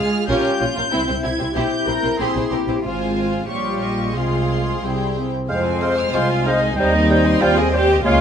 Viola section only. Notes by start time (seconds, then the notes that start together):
Already playing: G#3 F4
0.28 C#4 F4
0.59 C#4 F4
0.75 C#4 F4
0.92 C4 E4
1.07 C4 E4
1.23 C4 E4
1.39 C4 E4
1.55 C4 E4
1.87 C4 E4
2.03 C4 E4
2.18 C4 E4
2.35 C4 E4
2.52 C4 E4
2.68 C4 E4
2.84 G#3 F4
3.48 G3 F4
4.14 C4 F4
4.81 C4 E4
5.49 C4
6.13 F4
6.45 D#4
6.77 D#4
7.41 F4
7.57 G#4
7.73 G4
8.04 F4